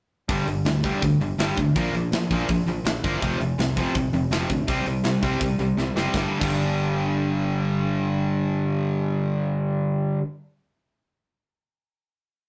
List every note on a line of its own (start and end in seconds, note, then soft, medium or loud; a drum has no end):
0.29 0.41 G1 medium
0.29 0.46 G2 loud
0.29 0.46 D3 loud
0.29 0.46 G3 loud
0.29 kick loud
0.29 open hi-hat medium
0.46 0.59 G1 medium
0.46 0.64 G2 medium
0.46 0.64 D3 medium
0.46 open hi-hat medium
0.65 0.90 D2 medium
0.65 0.82 G2 medium
0.65 0.82 D3 medium
0.65 snare loud
0.65 open hi-hat medium
0.83 1.01 G2 medium
0.83 1.01 D3 loud
0.83 1.01 G3 loud
0.83 kick medium
0.83 open hi-hat medium
1.02 1.14 D2 medium
1.02 1.19 G2 medium
1.02 1.19 D3 medium
1.02 kick loud
1.02 open hi-hat medium
1.20 1.32 G1 medium
1.20 1.37 G2 medium
1.20 1.37 D3 medium
1.20 open hi-hat medium
1.38 1.51 G1 medium
1.38 1.56 G2 medium
1.38 1.56 D3 medium
1.38 1.56 G3 medium
1.38 snare loud
1.38 open hi-hat medium
1.57 1.69 D2 medium
1.57 1.74 G2 medium
1.57 1.74 D3 medium
1.57 kick medium
1.57 open hi-hat medium
1.75 1.88 A#1 medium
1.75 1.93 A#2 loud
1.75 1.93 F3 loud
1.75 1.93 A#3 loud
1.75 kick loud
1.75 open hi-hat medium
1.93 2.06 A#1 medium
1.93 2.10 A#2 medium
1.93 2.11 F3 medium
1.93 open hi-hat medium
2.11 2.24 A#2 medium
2.11 2.29 A#2 medium
2.11 2.29 F3 medium
2.11 snare loud
2.11 open hi-hat medium
2.30 2.43 A#1 medium
2.30 2.48 A#2 medium
2.30 2.48 F3 medium
2.30 2.48 A#3 loud
2.30 kick medium
2.30 open hi-hat medium
2.49 2.61 A#1 medium
2.49 2.65 A#2 medium
2.49 2.65 F3 medium
2.49 kick loud
2.49 open hi-hat medium
2.66 2.79 A#1 medium
2.66 2.83 A#2 medium
2.66 2.83 F3 medium
2.66 open hi-hat soft
2.85 2.97 A#1 loud
2.85 3.01 A#2 medium
2.85 3.02 F3 medium
2.85 snare loud
2.85 open hi-hat medium
3.03 3.16 G1 medium
3.03 3.21 A#2 medium
3.03 3.21 F3 loud
3.03 3.21 A#3 loud
3.03 kick medium
3.03 open hi-hat medium
3.21 3.34 F1 loud
3.21 3.38 F2 medium
3.21 3.39 C3 loud
3.21 3.39 F3 loud
3.21 kick loud
3.21 open hi-hat medium
3.40 3.53 F1 medium
3.40 3.56 F2 medium
3.40 3.57 C3 medium
3.40 open hi-hat medium
3.58 3.83 C2 medium
3.58 3.75 F2 medium
3.58 3.75 C3 medium
3.58 snare loud
3.58 open hi-hat medium
3.77 3.94 F2 medium
3.77 3.94 C3 loud
3.77 3.94 F3 loud
3.77 kick medium
3.77 open hi-hat medium
3.95 4.07 C2 medium
3.95 4.11 F2 medium
3.95 4.12 C3 medium
3.95 kick loud
3.95 open hi-hat medium
4.12 4.25 F1 medium
4.12 4.30 F2 medium
4.12 4.30 C3 medium
4.12 open hi-hat medium
4.31 4.43 F1 medium
4.31 4.49 F2 medium
4.31 4.49 C3 medium
4.31 4.49 F3 loud
4.31 snare loud
4.31 open hi-hat medium
4.49 4.62 D2 medium
4.49 4.66 F2 medium
4.49 4.66 C3 medium
4.49 kick medium
4.49 open hi-hat medium
4.67 4.80 C2 medium
4.67 4.85 C3 medium
4.67 4.85 G3 loud
4.67 4.85 C4 loud
4.67 kick loud
4.67 open hi-hat medium
4.85 4.98 C2 medium
4.85 5.03 C3 medium
4.85 5.03 G3 medium
4.85 open hi-hat medium
5.03 5.16 C3 medium
5.03 5.21 C3 medium
5.03 5.21 G3 medium
5.03 snare loud
5.03 open hi-hat medium
5.22 5.35 C2 medium
5.22 5.40 C3 medium
5.22 5.40 G3 loud
5.22 5.41 C4 loud
5.22 kick medium
5.22 open hi-hat medium
5.40 5.53 C2 loud
5.40 5.58 C3 medium
5.40 5.58 G3 medium
5.40 kick loud
5.40 open hi-hat medium
5.58 5.71 C2 medium
5.58 5.76 C3 medium
5.58 5.76 G3 medium
5.58 open hi-hat medium
5.77 5.89 C2 loud
5.77 5.95 C3 medium
5.77 5.95 G3 medium
5.77 snare medium
5.95 6.07 F#1 medium
5.95 6.14 C3 medium
5.95 6.14 G3 loud
5.95 6.14 C4 loud
5.95 snare medium
6.14 6.24 G1 loud
6.14 6.40 G2 medium
6.14 6.43 D3 loud
6.14 kick loud
6.14 snare medium
6.18 6.44 G3 loud
6.41 10.16 G1 loud
6.41 10.19 G2 medium
6.41 10.22 D3 loud
6.41 kick loud
6.41 crash medium
6.45 10.23 G3 loud